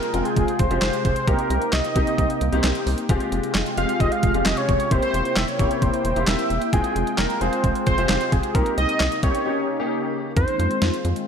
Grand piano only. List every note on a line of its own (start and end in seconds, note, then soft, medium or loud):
0.14 0.64 G#3 medium
0.14 0.64 C4 medium
0.14 0.64 F4 medium
0.14 0.64 G5 medium
0.71 1.21 G#3 medium
0.71 1.21 C4 medium
0.71 1.21 F4 medium
0.71 1.21 G4 medium
1.28 1.88 A#3 medium
1.28 1.88 C4 medium
1.28 1.88 D#4 medium
1.28 1.88 G4 medium
1.95 2.46 A#3 medium
1.95 2.46 C4 medium
1.95 2.46 D#4 medium
1.95 2.46 G4 medium
2.52 3.03 A#3 medium
2.52 3.03 C4 medium
2.52 3.03 D#4 medium
2.52 3.03 G4 loud
3.09 3.70 G#3 medium
3.09 3.70 C4 medium
3.09 3.70 F4 medium
3.09 3.70 G4 loud
3.77 4.28 G#3 medium
3.77 4.28 C4 medium
3.77 4.28 F4 medium
3.77 4.28 G4 medium
4.34 4.85 G#3 medium
4.34 4.85 C4 medium
4.34 4.85 F4 medium
4.34 4.85 G4 medium
4.91 5.52 A#3 medium
4.91 5.52 C4 medium
4.91 5.52 E4 medium
4.91 5.52 G4 medium
5.59 6.10 A#3 medium
5.59 6.10 C4 medium
5.59 6.10 E4 medium
5.59 6.10 G4 medium
6.16 6.67 A#3 medium
6.16 6.67 C4 medium
6.16 6.66 E4 medium
6.16 6.67 G4 medium
6.73 7.33 G#3 medium
6.73 7.33 C4 medium
6.73 7.33 F4 medium
6.73 7.33 G5 medium
7.41 7.91 G#3 medium
7.41 7.91 C4 medium
7.41 7.91 F4 medium
7.41 7.91 G#4 medium
7.98 8.48 G#3 medium
7.98 8.48 C4 medium
7.98 8.48 F4 medium
7.98 8.48 G4 medium
8.55 9.15 A#3 medium
8.55 9.15 C4 medium
8.55 9.15 D#4 medium
8.55 9.15 G4 medium
9.23 9.44 A#3 medium
9.23 9.46 C4 medium
9.23 9.44 D#4 medium
9.23 9.44 G4 medium
9.45 9.76 A#3 medium
9.45 9.76 C#4 medium
9.45 9.76 D#4 medium
9.45 9.76 G4 medium
9.80 10.30 A#3 medium
9.80 10.30 C#4 medium
9.80 10.30 D#4 medium
9.80 10.30 G4 loud